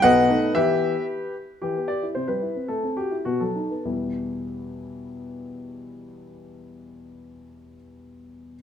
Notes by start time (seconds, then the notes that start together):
0.02 B1 B2 B4 D#5 F#5
0.29 A3 B3 D#4
0.55 E3 B3 E4 G4 B4 E5
1.62 E3 G4
1.76 B3
1.88 G4 D5
2.03 E4
2.15 C3 C5
2.28 G3 B4
2.42 E4
2.56 C4
2.68 A3 A4
2.83 C4
2.97 F#4 G4
3.11 E4
3.25 B2 F#4
3.40 F#3 A4
3.55 D#4
3.70 B3
3.85 E2 B2 G3 B3 E4